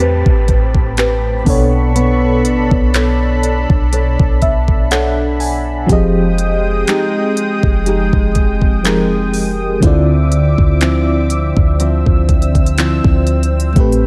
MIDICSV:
0, 0, Header, 1, 7, 480
1, 0, Start_track
1, 0, Tempo, 983607
1, 955, Time_signature, 4, 2, 24, 8
1, 6866, End_track
2, 0, Start_track
2, 0, Title_t, "Analog synth pad"
2, 0, Program_c, 0, 89
2, 0, Note_on_c, 0, 60, 72
2, 0, Note_on_c, 0, 67, 80
2, 0, Note_on_c, 0, 81, 77
2, 0, Note_on_c, 0, 83, 88
2, 699, Note_off_c, 0, 60, 0
2, 699, Note_off_c, 0, 67, 0
2, 699, Note_off_c, 0, 81, 0
2, 699, Note_off_c, 0, 83, 0
2, 715, Note_on_c, 0, 69, 91
2, 715, Note_on_c, 0, 83, 83
2, 715, Note_on_c, 0, 85, 98
2, 716, Note_on_c, 0, 62, 79
2, 1665, Note_off_c, 0, 85, 0
2, 2855, Note_off_c, 0, 69, 0
2, 2855, Note_off_c, 0, 83, 0
2, 2856, Note_off_c, 0, 62, 0
2, 2875, Note_on_c, 0, 56, 81
2, 2876, Note_on_c, 0, 87, 89
2, 2877, Note_on_c, 0, 79, 80
2, 4776, Note_off_c, 0, 56, 0
2, 4776, Note_off_c, 0, 87, 0
2, 4777, Note_off_c, 0, 79, 0
2, 4795, Note_on_c, 0, 86, 92
2, 4797, Note_on_c, 0, 60, 82
2, 4797, Note_on_c, 0, 76, 76
2, 5746, Note_off_c, 0, 86, 0
2, 5756, Note_on_c, 0, 88, 94
2, 6697, Note_off_c, 0, 76, 0
2, 6706, Note_off_c, 0, 88, 0
2, 6716, Note_on_c, 0, 69, 84
2, 6717, Note_on_c, 0, 79, 74
2, 6717, Note_on_c, 0, 83, 91
2, 6866, Note_off_c, 0, 60, 0
2, 6866, Note_off_c, 0, 69, 0
2, 6866, Note_off_c, 0, 79, 0
2, 6866, Note_off_c, 0, 83, 0
2, 6866, End_track
3, 0, Start_track
3, 0, Title_t, "FM electric piano"
3, 0, Program_c, 1, 5
3, 0, Control_c, 1, 64, 127
3, 0, Note_on_c, 1, 45, 79
3, 0, Note_on_c, 1, 57, 73
3, 0, Note_on_c, 1, 60, 71
3, 0, Note_on_c, 1, 67, 72
3, 0, Note_on_c, 1, 71, 89
3, 689, Note_off_c, 1, 45, 0
3, 693, Note_off_c, 1, 57, 0
3, 697, Note_off_c, 1, 60, 0
3, 700, Note_on_c, 1, 47, 74
3, 701, Note_off_c, 1, 67, 0
3, 705, Note_off_c, 1, 71, 0
3, 708, Note_on_c, 1, 59, 68
3, 716, Note_on_c, 1, 62, 66
3, 722, Control_c, 1, 64, 0
3, 724, Note_on_c, 1, 69, 70
3, 731, Note_on_c, 1, 73, 86
3, 819, Control_c, 1, 64, 127
3, 2158, Note_on_c, 1, 76, 76
3, 2380, Note_off_c, 1, 76, 0
3, 2398, Note_on_c, 1, 78, 74
3, 2608, Note_off_c, 1, 47, 0
3, 2612, Note_off_c, 1, 59, 0
3, 2616, Note_off_c, 1, 62, 0
3, 2620, Note_off_c, 1, 69, 0
3, 2620, Note_off_c, 1, 78, 0
3, 2624, Note_off_c, 1, 73, 0
3, 2637, Note_on_c, 1, 80, 71
3, 2859, Note_off_c, 1, 80, 0
3, 2862, Note_on_c, 1, 53, 82
3, 2870, Note_on_c, 1, 60, 72
3, 2877, Note_on_c, 1, 67, 74
3, 2881, Control_c, 1, 64, 0
3, 2885, Note_on_c, 1, 68, 71
3, 2892, Note_on_c, 1, 75, 92
3, 2967, Control_c, 1, 64, 127
3, 4289, Note_off_c, 1, 53, 0
3, 4293, Note_off_c, 1, 60, 0
3, 4296, Note_off_c, 1, 67, 0
3, 4300, Note_off_c, 1, 68, 0
3, 4304, Note_off_c, 1, 75, 0
3, 4309, Note_on_c, 1, 53, 65
3, 4313, Note_on_c, 1, 60, 54
3, 4317, Note_on_c, 1, 67, 55
3, 4321, Note_on_c, 1, 68, 55
3, 4323, Note_on_c, 1, 70, 66
3, 4782, Note_on_c, 1, 50, 84
3, 4785, Note_off_c, 1, 60, 0
3, 4791, Note_on_c, 1, 60, 73
3, 4792, Note_off_c, 1, 53, 0
3, 4796, Note_off_c, 1, 67, 0
3, 4797, Note_on_c, 1, 64, 71
3, 4798, Note_off_c, 1, 68, 0
3, 4799, Note_off_c, 1, 70, 0
3, 4802, Control_c, 1, 64, 0
3, 4806, Note_on_c, 1, 65, 73
3, 4813, Note_on_c, 1, 74, 86
3, 4881, Control_c, 1, 64, 127
3, 6689, Note_off_c, 1, 50, 0
3, 6693, Note_off_c, 1, 60, 0
3, 6697, Note_off_c, 1, 64, 0
3, 6701, Note_off_c, 1, 65, 0
3, 6703, Note_on_c, 1, 45, 75
3, 6704, Note_off_c, 1, 74, 0
3, 6711, Note_on_c, 1, 57, 70
3, 6717, Note_on_c, 1, 60, 73
3, 6722, Control_c, 1, 64, 0
3, 6725, Note_on_c, 1, 67, 73
3, 6734, Note_on_c, 1, 71, 89
3, 6798, Control_c, 1, 64, 127
3, 6866, Note_off_c, 1, 45, 0
3, 6866, Note_off_c, 1, 57, 0
3, 6866, Note_off_c, 1, 60, 0
3, 6866, Note_off_c, 1, 67, 0
3, 6866, Note_off_c, 1, 71, 0
3, 6866, End_track
4, 0, Start_track
4, 0, Title_t, "Nylon-string guitar"
4, 0, Program_c, 2, 24
4, 0, Note_on_c, 2, 57, 88
4, 0, Note_on_c, 2, 60, 69
4, 0, Note_on_c, 2, 67, 63
4, 0, Note_on_c, 2, 71, 72
4, 468, Note_off_c, 2, 60, 0
4, 471, Note_off_c, 2, 67, 0
4, 474, Note_on_c, 2, 60, 65
4, 476, Note_on_c, 2, 67, 68
4, 478, Note_off_c, 2, 71, 0
4, 480, Note_on_c, 2, 71, 75
4, 712, Note_off_c, 2, 57, 0
4, 714, Note_on_c, 2, 59, 81
4, 766, Note_off_c, 2, 60, 0
4, 768, Note_off_c, 2, 67, 0
4, 948, Note_off_c, 2, 59, 0
4, 954, Note_on_c, 2, 59, 88
4, 1434, Note_on_c, 2, 62, 63
4, 1437, Note_on_c, 2, 69, 62
4, 1438, Note_off_c, 2, 71, 0
4, 1440, Note_on_c, 2, 73, 73
4, 1908, Note_off_c, 2, 62, 0
4, 1911, Note_off_c, 2, 69, 0
4, 1914, Note_off_c, 2, 73, 0
4, 1914, Note_on_c, 2, 62, 68
4, 1917, Note_on_c, 2, 69, 64
4, 1920, Note_on_c, 2, 73, 78
4, 2388, Note_off_c, 2, 62, 0
4, 2391, Note_off_c, 2, 69, 0
4, 2394, Note_on_c, 2, 62, 65
4, 2395, Note_off_c, 2, 73, 0
4, 2397, Note_on_c, 2, 69, 69
4, 2400, Note_on_c, 2, 73, 75
4, 2874, Note_off_c, 2, 59, 0
4, 2875, Note_on_c, 2, 53, 84
4, 2926, Note_off_c, 2, 62, 0
4, 2928, Note_off_c, 2, 69, 0
4, 2930, Note_off_c, 2, 73, 0
4, 3355, Note_on_c, 2, 56, 62
4, 3358, Note_on_c, 2, 63, 61
4, 3361, Note_on_c, 2, 67, 68
4, 3829, Note_off_c, 2, 56, 0
4, 3832, Note_off_c, 2, 63, 0
4, 3835, Note_off_c, 2, 67, 0
4, 3835, Note_on_c, 2, 56, 69
4, 3838, Note_on_c, 2, 63, 69
4, 3841, Note_on_c, 2, 67, 76
4, 4309, Note_off_c, 2, 56, 0
4, 4312, Note_off_c, 2, 63, 0
4, 4315, Note_off_c, 2, 67, 0
4, 4315, Note_on_c, 2, 56, 67
4, 4318, Note_on_c, 2, 63, 69
4, 4321, Note_on_c, 2, 67, 75
4, 4793, Note_off_c, 2, 53, 0
4, 4795, Note_on_c, 2, 50, 93
4, 4847, Note_off_c, 2, 56, 0
4, 4848, Note_off_c, 2, 63, 0
4, 4850, Note_off_c, 2, 67, 0
4, 5275, Note_on_c, 2, 53, 63
4, 5278, Note_on_c, 2, 60, 66
4, 5280, Note_on_c, 2, 64, 70
4, 5749, Note_off_c, 2, 53, 0
4, 5755, Note_on_c, 2, 53, 68
4, 5756, Note_off_c, 2, 60, 0
4, 5758, Note_on_c, 2, 60, 67
4, 5759, Note_off_c, 2, 64, 0
4, 5761, Note_on_c, 2, 64, 73
4, 6229, Note_off_c, 2, 53, 0
4, 6235, Note_on_c, 2, 53, 70
4, 6236, Note_off_c, 2, 60, 0
4, 6237, Note_on_c, 2, 60, 69
4, 6239, Note_off_c, 2, 64, 0
4, 6241, Note_on_c, 2, 64, 76
4, 6712, Note_off_c, 2, 53, 0
4, 6714, Note_on_c, 2, 57, 86
4, 6715, Note_off_c, 2, 50, 0
4, 6866, Note_off_c, 2, 57, 0
4, 6866, Note_off_c, 2, 60, 0
4, 6866, Note_off_c, 2, 64, 0
4, 6866, End_track
5, 0, Start_track
5, 0, Title_t, "808-style bass"
5, 0, Program_c, 3, 38
5, 0, Note_on_c, 3, 40, 102
5, 115, Note_off_c, 3, 40, 0
5, 127, Note_on_c, 3, 33, 99
5, 697, Note_off_c, 3, 33, 0
5, 715, Note_on_c, 3, 35, 108
5, 1196, Note_on_c, 3, 33, 100
5, 1203, Note_off_c, 3, 35, 0
5, 1319, Note_off_c, 3, 33, 0
5, 1324, Note_on_c, 3, 35, 102
5, 1785, Note_off_c, 3, 35, 0
5, 1805, Note_on_c, 3, 35, 97
5, 2035, Note_off_c, 3, 35, 0
5, 2048, Note_on_c, 3, 35, 100
5, 2857, Note_off_c, 3, 35, 0
5, 2876, Note_on_c, 3, 29, 119
5, 3336, Note_off_c, 3, 29, 0
5, 3725, Note_on_c, 3, 29, 106
5, 3955, Note_off_c, 3, 29, 0
5, 3967, Note_on_c, 3, 29, 101
5, 4777, Note_off_c, 3, 29, 0
5, 4796, Note_on_c, 3, 38, 112
5, 5150, Note_off_c, 3, 38, 0
5, 5165, Note_on_c, 3, 38, 96
5, 5625, Note_off_c, 3, 38, 0
5, 5644, Note_on_c, 3, 38, 102
5, 5875, Note_off_c, 3, 38, 0
5, 5887, Note_on_c, 3, 38, 98
5, 6347, Note_off_c, 3, 38, 0
5, 6365, Note_on_c, 3, 38, 104
5, 6701, Note_off_c, 3, 38, 0
5, 6716, Note_on_c, 3, 33, 121
5, 6866, Note_off_c, 3, 33, 0
5, 6866, End_track
6, 0, Start_track
6, 0, Title_t, "Downlifter"
6, 0, Program_c, 4, 103
6, 0, Note_on_c, 4, 60, 82
6, 2875, Note_off_c, 4, 60, 0
6, 6866, End_track
7, 0, Start_track
7, 0, Title_t, "Drums"
7, 127, Note_on_c, 9, 36, 97
7, 176, Note_off_c, 9, 36, 0
7, 235, Note_on_c, 9, 42, 55
7, 236, Note_on_c, 9, 36, 92
7, 283, Note_off_c, 9, 42, 0
7, 285, Note_off_c, 9, 36, 0
7, 364, Note_on_c, 9, 36, 98
7, 413, Note_off_c, 9, 36, 0
7, 474, Note_on_c, 9, 42, 69
7, 481, Note_on_c, 9, 39, 115
7, 523, Note_off_c, 9, 42, 0
7, 530, Note_off_c, 9, 39, 0
7, 714, Note_on_c, 9, 46, 71
7, 715, Note_on_c, 9, 36, 109
7, 763, Note_off_c, 9, 46, 0
7, 764, Note_off_c, 9, 36, 0
7, 955, Note_on_c, 9, 42, 77
7, 1004, Note_off_c, 9, 42, 0
7, 1195, Note_on_c, 9, 42, 77
7, 1244, Note_off_c, 9, 42, 0
7, 1324, Note_on_c, 9, 36, 92
7, 1373, Note_off_c, 9, 36, 0
7, 1435, Note_on_c, 9, 42, 81
7, 1440, Note_on_c, 9, 39, 122
7, 1483, Note_off_c, 9, 42, 0
7, 1488, Note_off_c, 9, 39, 0
7, 1676, Note_on_c, 9, 42, 76
7, 1725, Note_off_c, 9, 42, 0
7, 1804, Note_on_c, 9, 36, 105
7, 1853, Note_off_c, 9, 36, 0
7, 1916, Note_on_c, 9, 42, 82
7, 1965, Note_off_c, 9, 42, 0
7, 2047, Note_on_c, 9, 36, 99
7, 2096, Note_off_c, 9, 36, 0
7, 2155, Note_on_c, 9, 42, 57
7, 2157, Note_on_c, 9, 36, 93
7, 2204, Note_off_c, 9, 42, 0
7, 2206, Note_off_c, 9, 36, 0
7, 2284, Note_on_c, 9, 36, 96
7, 2333, Note_off_c, 9, 36, 0
7, 2396, Note_on_c, 9, 42, 69
7, 2403, Note_on_c, 9, 39, 112
7, 2445, Note_off_c, 9, 42, 0
7, 2452, Note_off_c, 9, 39, 0
7, 2636, Note_on_c, 9, 46, 67
7, 2684, Note_off_c, 9, 46, 0
7, 2876, Note_on_c, 9, 36, 118
7, 2876, Note_on_c, 9, 42, 82
7, 2925, Note_off_c, 9, 36, 0
7, 2925, Note_off_c, 9, 42, 0
7, 3115, Note_on_c, 9, 42, 73
7, 3164, Note_off_c, 9, 42, 0
7, 3355, Note_on_c, 9, 42, 83
7, 3360, Note_on_c, 9, 39, 123
7, 3404, Note_off_c, 9, 42, 0
7, 3408, Note_off_c, 9, 39, 0
7, 3596, Note_on_c, 9, 42, 74
7, 3645, Note_off_c, 9, 42, 0
7, 3725, Note_on_c, 9, 36, 105
7, 3773, Note_off_c, 9, 36, 0
7, 3837, Note_on_c, 9, 42, 80
7, 3886, Note_off_c, 9, 42, 0
7, 3967, Note_on_c, 9, 36, 98
7, 4016, Note_off_c, 9, 36, 0
7, 4075, Note_on_c, 9, 42, 56
7, 4077, Note_on_c, 9, 36, 91
7, 4123, Note_off_c, 9, 42, 0
7, 4126, Note_off_c, 9, 36, 0
7, 4204, Note_on_c, 9, 36, 95
7, 4253, Note_off_c, 9, 36, 0
7, 4317, Note_on_c, 9, 42, 72
7, 4324, Note_on_c, 9, 39, 111
7, 4366, Note_off_c, 9, 42, 0
7, 4372, Note_off_c, 9, 39, 0
7, 4556, Note_on_c, 9, 46, 68
7, 4604, Note_off_c, 9, 46, 0
7, 4795, Note_on_c, 9, 36, 121
7, 4795, Note_on_c, 9, 42, 77
7, 4843, Note_off_c, 9, 42, 0
7, 4844, Note_off_c, 9, 36, 0
7, 5035, Note_on_c, 9, 42, 72
7, 5083, Note_off_c, 9, 42, 0
7, 5164, Note_on_c, 9, 36, 88
7, 5213, Note_off_c, 9, 36, 0
7, 5274, Note_on_c, 9, 42, 83
7, 5279, Note_on_c, 9, 39, 118
7, 5323, Note_off_c, 9, 42, 0
7, 5328, Note_off_c, 9, 39, 0
7, 5514, Note_on_c, 9, 42, 79
7, 5563, Note_off_c, 9, 42, 0
7, 5644, Note_on_c, 9, 36, 103
7, 5693, Note_off_c, 9, 36, 0
7, 5757, Note_on_c, 9, 42, 80
7, 5806, Note_off_c, 9, 42, 0
7, 5887, Note_on_c, 9, 36, 100
7, 5936, Note_off_c, 9, 36, 0
7, 5996, Note_on_c, 9, 42, 49
7, 5997, Note_on_c, 9, 36, 95
7, 6045, Note_off_c, 9, 42, 0
7, 6046, Note_off_c, 9, 36, 0
7, 6061, Note_on_c, 9, 42, 50
7, 6110, Note_off_c, 9, 42, 0
7, 6124, Note_on_c, 9, 36, 96
7, 6125, Note_on_c, 9, 42, 51
7, 6173, Note_off_c, 9, 36, 0
7, 6174, Note_off_c, 9, 42, 0
7, 6180, Note_on_c, 9, 42, 52
7, 6229, Note_off_c, 9, 42, 0
7, 6235, Note_on_c, 9, 42, 70
7, 6242, Note_on_c, 9, 39, 108
7, 6284, Note_off_c, 9, 42, 0
7, 6290, Note_off_c, 9, 39, 0
7, 6366, Note_on_c, 9, 36, 94
7, 6415, Note_off_c, 9, 36, 0
7, 6474, Note_on_c, 9, 42, 55
7, 6474, Note_on_c, 9, 46, 70
7, 6523, Note_off_c, 9, 42, 0
7, 6523, Note_off_c, 9, 46, 0
7, 6554, Note_on_c, 9, 42, 56
7, 6603, Note_off_c, 9, 42, 0
7, 6635, Note_on_c, 9, 42, 58
7, 6684, Note_off_c, 9, 42, 0
7, 6715, Note_on_c, 9, 36, 119
7, 6715, Note_on_c, 9, 42, 55
7, 6764, Note_off_c, 9, 36, 0
7, 6764, Note_off_c, 9, 42, 0
7, 6795, Note_on_c, 9, 42, 58
7, 6844, Note_off_c, 9, 42, 0
7, 6866, End_track
0, 0, End_of_file